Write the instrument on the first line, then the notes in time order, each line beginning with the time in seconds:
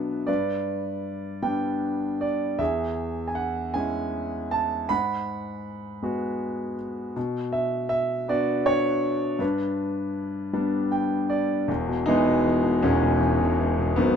grand piano
Already playing: B2 F#3 B3 D4 B4 E5 F#5
0.27 G2 B4 D5
1.42 G3 B3 D4 G5
2.21 D5
2.59 E2 G#4 E5
3.27 G#5
3.35 F#5
3.74 G#3 C#4 E4 G#5
4.51 A5
4.89 G#2 F#5 B5
6.03 G#3 B3 F#4
7.16 B2
7.53 E5
7.89 E5
8.28 B3 D4 F#4 D5
8.66 C#5
9.39 G2 D4 B4
10.53 G3 B3 D4
10.91 G5
11.30 D5
11.68 E1 E2
11.88 B2
12.06 E3 G#3 B3 D#4
12.27 B2
12.45 E3
12.63 B2
12.83 E1 E2 G#3 C#4
13.02 B2
13.20 E3
13.41 B2
13.59 E3
13.78 B2
13.96 G#1 G#2 D#3 F#3 B3